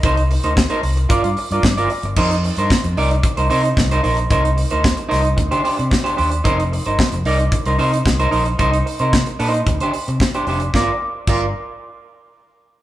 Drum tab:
CC |----------------|x---------------|----------------|----------------|
HH |xxox-xoxxxox-xox|-xox-xoxxxox-xox|xxox-xoxxxox-xox|xxox-xoxxxox-xox|
SD |----o-------o---|----o-------o---|----o-o-----o---|----o-------o---|
BD |o---o---o---o---|o---o---o---o---|o---o---o---o---|o---o---o---o---|

CC |----------------|----x-----------|
HH |xxox-xoxxxox-xox|----------------|
SD |----o-------o---|o---------------|
BD |o---o---o---o---|o---o-----------|